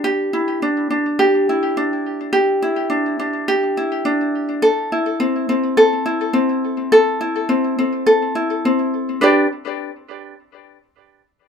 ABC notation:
X:1
M:4/4
L:1/8
Q:"Swing 16ths" 1/4=104
K:Ador
V:1 name="Ukulele"
G E D D G E D2 | G E D D G E D2 | A E C C A E C2 | A E C C A E C2 |
[DGBd] z6 z |]